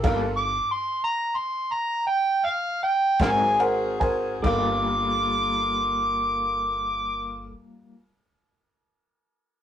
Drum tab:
CC |x-----------|x-----------|
RD |x--------xxx|------------|
SD |---------o--|------------|
BD |o--------o-o|o-----------|